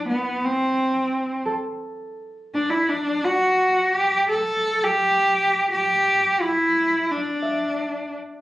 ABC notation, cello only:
X:1
M:4/4
L:1/16
Q:1/4=86
K:Em
V:1 name="Cello"
B,2 C6 z6 D E | D2 F4 G2 A3 G4- G | G4 E4 D6 z2 |]